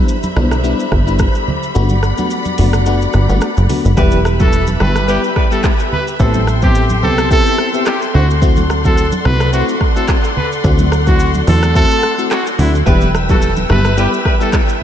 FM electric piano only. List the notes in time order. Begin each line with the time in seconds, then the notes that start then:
Already playing: G3 B3 D4 E4
0.36 G3 B3 D4 E4
0.63 G3 B3 D4 E4
1.07 G3 B3 D4 E4
1.75 A3 B3 D4 F#4
2.18 A3 B3 D4 F#4
2.58 A3 B3 D4 F#4
2.86 A3 B3 D4 F#4
3.29 A3 B3 D4 F#4
3.69 A3 B3 D4 F#4
3.97 G3 B3 E4 G4
4.40 G3 B3 E4 G4
4.80 G3 B3 E4 G4
5.08 G3 B3 E4 G4
5.51 G3 B3 E4 G4
6.19 B3 C4 E4 G4
6.62 B3 C4 E4 G4
7.03 B3 C4 E4 G4
7.30 B3 C4 E4 G4
7.74 B3 C4 E4 G4
8.14 A3 C4 E4 F#4
8.42 A3 C4 E4 F#4
8.84 A3 C4 E4 F#4
9.25 A3 C4 E4 F#4
9.53 A3 C4 E4 F#4
9.96 A3 C4 E4 F#4
10.64 A3 C4 E4 F#4
11.07 A3 C4 E4 F#4
11.47 A3 C4 E4 F#4
11.75 A3 C4 E4 F#4
12.18 A3 C4 E4 F#4
12.58 A3 C4 E4 F#4
12.86 G3 B3 E4 G4
13.29 G3 B3 E4 G4
13.69 G3 B3 E4 G4
13.97 G3 B3 E4 G4
14.40 G3 B3 E4 G4